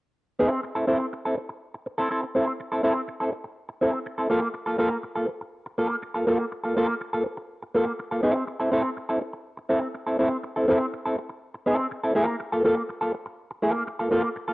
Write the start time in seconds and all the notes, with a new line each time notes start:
0.39 C4 E4 A4
0.51 muted clean electric guitar stroke
0.63 muted clean electric guitar stroke
0.75 C4 E4 A4
0.87 C4 E4 A4
1.00 muted clean electric guitar stroke
1.13 muted clean electric guitar stroke
1.25 C4 E4 A4
1.37 muted clean electric guitar stroke
1.49 muted clean electric guitar stroke
1.74 muted clean electric guitar stroke
1.86 muted clean electric guitar stroke
1.98 C4 E4 A4
2.11 C4 E4 A4
2.23 muted clean electric guitar stroke
2.35 C4 E4 A4
2.48 muted clean electric guitar stroke
2.60 muted clean electric guitar stroke
2.72 C4 E4 A4
2.83 C4 E4 A4
2.96 muted clean electric guitar stroke
3.08 muted clean electric guitar stroke
3.21 C4 E4 A4
3.32 muted clean electric guitar stroke
3.45 muted clean electric guitar stroke
3.69 muted clean electric guitar stroke
3.81 C4 E4 A4
3.94 muted clean electric guitar stroke
4.06 muted clean electric guitar stroke
4.18 C4 E4 A4
4.30 A#3 F4 A4
4.42 muted clean electric guitar stroke
4.54 muted clean electric guitar stroke
4.66 A#3 F4 A4
4.78 A#3 F4 A4
4.91 muted clean electric guitar stroke
5.03 muted clean electric guitar stroke
5.15 A#3 F4 A4
5.28 muted clean electric guitar stroke
5.41 muted clean electric guitar stroke
5.66 muted clean electric guitar stroke
5.78 A#3 F4 A4
5.90 muted clean electric guitar stroke
6.02 muted clean electric guitar stroke
6.14 A#3 F4 A4
6.27 A#3 F4 A4
6.40 muted clean electric guitar stroke
6.52 muted clean electric guitar stroke
6.64 A#3 F4 A4
6.77 A#3 F4 A4
6.89 muted clean electric guitar stroke
7.01 muted clean electric guitar stroke
7.13 A#3 F4 A4
7.26 muted clean electric guitar stroke
7.37 muted clean electric guitar stroke
7.62 muted clean electric guitar stroke
7.74 A#3 F4 A4
7.87 muted clean electric guitar stroke
7.99 muted clean electric guitar stroke
8.11 A#3 F4 A4
8.23 C4 E4 A4
8.36 muted clean electric guitar stroke
8.47 muted clean electric guitar stroke
8.60 C4 E4 A4
8.72 C4 E4 A4
8.84 muted clean electric guitar stroke
8.97 muted clean electric guitar stroke
9.09 C4 E4 A4
9.21 muted clean electric guitar stroke
9.33 muted clean electric guitar stroke
9.57 muted clean electric guitar stroke
9.69 C4 E4 A4
9.82 muted clean electric guitar stroke
9.95 muted clean electric guitar stroke
10.07 C4 E4 A4
10.19 C4 E4 A4
10.31 muted clean electric guitar stroke
10.43 muted clean electric guitar stroke
10.56 C4 E4 A4
10.68 C4 E4 A4
10.80 muted clean electric guitar stroke
10.94 muted clean electric guitar stroke
11.05 C4 E4 A4
11.18 muted clean electric guitar stroke
11.29 muted clean electric guitar stroke
11.54 muted clean electric guitar stroke
11.66 C4 E4 A4
11.79 muted clean electric guitar stroke
11.91 muted clean electric guitar stroke
12.03 C4 E4 A4
12.15 A#3 F4 A4
12.28 muted clean electric guitar stroke
12.40 muted clean electric guitar stroke
12.52 A#3 F4 A4
12.64 A#3 F4 A4
12.77 muted clean electric guitar stroke
12.89 muted clean electric guitar stroke
13.01 A#3 F4 A4
13.14 muted clean electric guitar stroke
13.26 muted clean electric guitar stroke
13.51 muted clean electric guitar stroke
13.62 A#3 F4 A4
13.75 muted clean electric guitar stroke
13.87 muted clean electric guitar stroke
13.99 A#3 F4 A4
14.11 A#3 F4 A4
14.24 muted clean electric guitar stroke
14.36 muted clean electric guitar stroke
14.48 A#3 F4 A4